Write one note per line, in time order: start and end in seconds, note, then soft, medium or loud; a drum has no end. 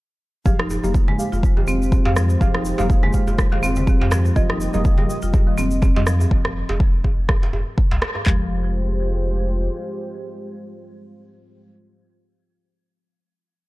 0.45 0.77 F1 medium
0.45 0.58 F3 medium
0.45 0.80 G#3 medium
0.45 4.32 G#3 medium
0.45 6.27 F4 medium
0.45 0.80 G4 medium
0.45 4.32 G4 medium
0.45 4.32 C5 medium
0.45 0.80 F5 loud
0.45 kick loud
0.45 high conga medium
0.45 djembe tone medium
0.45 shaker soft
0.59 0.69 D#4 medium
0.59 cross-stick medium
0.70 djembe tone medium
0.70 shaker medium
0.83 1.14 F1 medium
0.83 0.90 G#3 medium
0.83 0.93 A#3 medium
0.83 0.90 G4 medium
0.83 0.90 F5 medium
0.83 high conga medium
0.83 shaker soft
0.94 kick loud
0.94 shaker soft
1.08 1.14 G#3 medium
1.08 djembe tone medium
1.08 low conga loud
1.19 1.27 G#3 medium
1.19 1.27 G4 medium
1.19 1.27 F5 medium
1.19 shaker medium
1.32 1.63 F1 medium
1.32 1.42 F4 medium
1.32 djembe tone medium
1.32 shaker soft
1.43 kick loud
1.43 high conga medium
1.43 shaker soft
1.57 1.63 D#3 medium
1.57 2.02 G#3 medium
1.57 2.02 G4 medium
1.57 2.02 F5 medium
1.57 djembe tone medium
1.67 1.99 F1 medium
1.67 1.80 C4 medium
1.67 high conga soft
1.67 shaker medium
1.82 shaker soft
1.92 2.00 C4 medium
1.92 kick loud
1.92 high conga medium
1.92 djembe tone medium
1.92 shaker soft
2.05 2.36 F2 medium
2.05 2.12 G#3 medium
2.05 2.12 G4 medium
2.05 2.12 F5 loud
2.05 djembe slap medium
2.16 2.29 F3 medium
2.16 cross-stick medium
2.16 high conga medium
2.16 djembe tone medium
2.16 shaker medium
2.30 shaker soft
2.41 2.72 F1 medium
2.41 2.53 F3 medium
2.41 2.76 G#3 medium
2.41 2.76 G4 medium
2.41 2.76 F5 loud
2.41 kick loud
2.41 high conga medium
2.41 djembe tone medium
2.41 shaker soft
2.54 2.64 D#4 medium
2.54 cross-stick medium
2.65 shaker medium
2.78 3.09 F1 medium
2.78 2.85 G#3 medium
2.78 2.89 A#3 medium
2.78 2.85 G4 medium
2.78 2.85 F5 medium
2.78 djembe slap medium
2.78 djembe tone medium
2.78 high conga loud
2.78 shaker soft
2.90 kick loud
2.90 shaker soft
3.03 3.09 G#3 medium
3.03 djembe tone medium
3.03 low conga loud
3.13 3.22 G#3 medium
3.13 3.22 G4 medium
3.13 3.22 F5 medium
3.13 kick medium
3.13 shaker medium
3.27 3.58 F1 medium
3.27 3.37 F4 medium
3.27 djembe tone medium
3.27 shaker soft
3.38 kick loud
3.38 cross-stick medium
3.38 high conga medium
3.38 shaker soft
3.52 3.58 D#3 medium
3.52 3.98 G#3 medium
3.52 3.98 G4 medium
3.52 3.98 F5 medium
3.52 djembe slap medium
3.63 3.95 F1 loud
3.63 3.75 C4 loud
3.63 djembe tone medium
3.63 shaker loud
3.76 low conga loud
3.76 shaker medium
3.87 3.95 C4 medium
3.87 kick loud
3.87 high conga medium
3.87 djembe tone medium
3.87 shaker soft
4.00 4.31 F2 medium
4.00 4.07 G#3 medium
4.00 4.07 G4 medium
4.00 4.07 F5 loud
4.00 djembe slap medium
4.11 4.24 F3 medium
4.11 cross-stick medium
4.11 djembe slap medium
4.11 djembe tone medium
4.11 shaker medium
4.25 shaker medium
4.36 4.68 F1 medium
4.36 4.48 F3 medium
4.36 4.71 G3 loud
4.36 6.29 A#3 medium
4.36 4.71 F4 medium
4.36 6.29 G4 medium
4.36 4.71 D#5 loud
4.36 6.29 D#5 medium
4.36 kick loud
4.36 high conga medium
4.36 shaker soft
4.50 4.59 D#4 medium
4.50 cross-stick medium
4.50 djembe tone medium
4.61 shaker medium
4.74 5.04 F1 medium
4.74 4.80 G3 medium
4.74 4.84 A#3 medium
4.74 4.80 F4 medium
4.74 4.80 D#5 medium
4.74 high conga medium
4.74 djembe tone medium
4.74 shaker soft
4.85 kick loud
4.85 shaker soft
4.98 5.04 G3 medium
4.98 djembe tone medium
4.98 low conga loud
5.09 5.17 G3 medium
5.09 5.17 F4 medium
5.09 5.17 D#5 medium
5.09 shaker medium
5.22 5.53 F1 medium
5.22 5.32 F4 medium
5.22 shaker medium
5.33 kick loud
5.33 high conga medium
5.33 djembe tone medium
5.33 shaker soft
5.47 5.53 D#3 medium
5.47 5.93 G3 medium
5.47 5.93 F4 medium
5.47 5.93 D#5 medium
5.58 5.90 F1 loud
5.58 5.70 C4 medium
5.58 djembe tone medium
5.58 high conga medium
5.58 shaker loud
5.71 shaker medium
5.82 5.90 C4 medium
5.82 kick loud
5.82 djembe tone medium
5.82 high conga medium
5.82 shaker soft
5.96 6.26 F2 medium
5.96 6.02 G3 loud
5.96 6.02 F4 medium
5.96 6.02 D#5 loud
5.96 djembe slap loud
6.07 6.19 F3 medium
6.07 cross-stick medium
6.07 high conga medium
6.07 shaker medium
6.21 djembe tone medium
6.21 shaker medium
6.31 6.63 F1 medium
6.31 kick loud
6.45 cross-stick medium
6.45 djembe tone medium
6.69 6.99 F1 medium
6.69 djembe slap medium
6.69 djembe tone medium
6.80 kick loud
7.04 kick medium
7.04 djembe tone medium
7.18 7.48 F1 medium
7.29 kick loud
7.29 cross-stick medium
7.29 djembe tone medium
7.43 djembe slap medium
7.53 7.63 F1 loud
7.53 djembe tone medium
7.78 kick loud
7.91 7.99 C2 medium
7.91 djembe slap loud
7.91 djembe tone medium
8.02 cross-stick medium
8.02 djembe slap medium
8.15 djembe tone medium
8.26 9.69 F1 medium
8.26 8.49 F3 medium
8.26 11.71 G#3 medium
8.26 11.71 F4 medium
8.26 11.71 G4 medium
8.26 11.71 C5 medium
8.26 11.71 F5 medium
8.26 kick loud
8.26 clap medium
8.26 floor tom loud